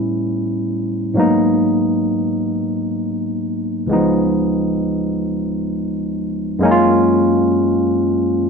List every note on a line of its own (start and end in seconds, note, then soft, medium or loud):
0.00 1.10 A2 medium
0.00 1.11 G3 medium
0.00 1.12 B3 medium
0.00 1.13 C#4 medium
0.00 1.14 E4 medium
1.14 3.84 G#2 medium
1.14 3.84 F#3 medium
1.14 3.85 A#3 medium
1.14 3.86 B3 medium
1.19 3.86 D#4 medium
3.87 6.56 C#2 medium
3.87 3.95 E3 medium
3.87 6.58 G#3 medium
3.91 6.60 F3 medium
3.91 6.59 B3 medium
3.91 6.59 D#4 medium
6.59 8.50 F#2 medium
6.59 8.50 G#3 medium
6.59 8.50 A#3 medium
6.63 8.50 C#4 medium
6.63 6.70 D#4 medium
6.71 8.50 F4 medium